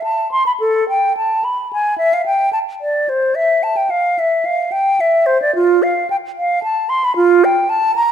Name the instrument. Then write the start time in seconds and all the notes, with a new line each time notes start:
flute
0.04 A5
0.32 C6
0.46 B5
0.60 A4
0.89 G5
1.17 A5
1.44 B5
1.73 G#5
1.98 E5
2.13 F5
2.26 G5
2.53 A5
2.81 D5
3.09 C5
3.35 E5
3.63 A5
3.77 G5
3.90 F5
4.19 E5
4.45 F5
4.72 G5
5.01 E5
5.26 C5
5.42 D5
5.55 F4
5.83 F5
6.10 G5
6.38 F5
6.63 A5
6.89 C6
7.04 B5
7.16 F4
7.45 G5
7.69 A5
7.96 A#5